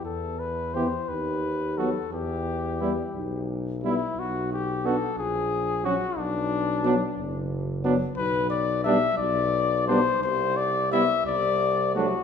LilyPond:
<<
  \new Staff \with { instrumentName = "Trumpet" } { \time 6/8 \key e \minor \tempo 4. = 59 a'8 b'8 c''8 b'4 a'8 | g'2 r8 e'8 | fis'8 g'8 a'8 gis'4 fis'8 | d'2 r4 |
\key g \major b'8 d''8 e''8 d''4 c''8 | c''8 d''8 e''8 d''4 fis'8 | }
  \new Staff \with { instrumentName = "Flugelhorn" } { \time 6/8 \key e \minor r4 g'16 r4 r16 fis'16 r16 | r4 e'16 r4 r16 e'16 r16 | r4 fis'16 r4 r16 fis'16 r16 | r4 d'16 r4 r16 d'16 r16 |
\key g \major r4 d'16 r4 r16 d'16 r16 | r4 e'16 r4 r16 d'16 r16 | }
  \new Staff \with { instrumentName = "French horn" } { \time 6/8 \key e \minor r4 b16 r4 r16 b16 r16 | r4 b16 r4 r16 b16 r16 | r4 d'16 r4 r16 cis'16 r16 | r4 b16 r4 r16 b16 r16 |
\key g \major r4 b16 r4 r16 b16 r16 | r4 b16 r4 r16 a16 r16 | }
  \new Staff \with { instrumentName = "Trombone" } { \clef bass \time 6/8 \key e \minor r4 e16 r4 r16 fis16 r16 | r4 g16 r4 r16 g16 r16 | r4 b16 r4 r16 fis16 r16 | r4 fis16 r4 r16 fis16 r16 |
\key g \major r4 g16 r4 r16 g16 r16 | r4 g16 r4 r16 fis16 r16 | }
  \new Staff \with { instrumentName = "Bass trombone" } { \clef bass \time 6/8 \key e \minor e,4. dis,4. | e,4. b,,4. | b,,4. ais,,4. | b,,4. fis,,4. |
\key g \major b,,4. b,,4. | c,4. c,4. | }
>>